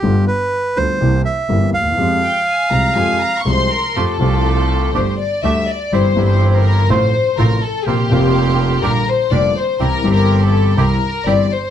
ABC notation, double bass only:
X:1
M:4/4
L:1/8
Q:1/4=123
K:Fm
V:1 name="Double bass" clef=bass
G,,, z2 =D,, C,, z G,,, E,, | F,, z2 C,, F,, z C,, z | [K:F] F,, C,,3 G,,, z D,, z | G,,, G,,,3 A,,, z A,,, z |
B,,, F,,,3 B,,, z F,,, z | C,, G,,,3 C,, z G,,, z |]